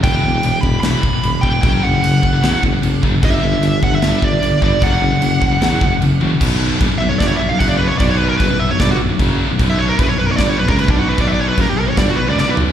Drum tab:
CC |x---x---x---x---|x---x---x---x---|x---x---x---x---|x---x---x---x---|
SD |--------o-------|--------o-------|--------o-------|--------o-------|
T1 |----------------|----------------|----------------|--------------o-|
FT |----------------|----------------|----------------|----------------|
BD |o-----o---o---o-|o-----o---o---o-|o-----o---o---o-|o-----o---o-----|

CC |x---x---x---x---|x---x---x---x---|x---x---x---x---|x---x---x-------|
SD |--------o-------|--------o-------|--------o-------|--------o---o---|
T1 |----------------|----------------|----------------|----------------|
FT |----------------|----------------|----------------|--------------o-|
BD |o---o---o---o---|o---o---o---o---|o---o---o--o-o--|o---o---o-------|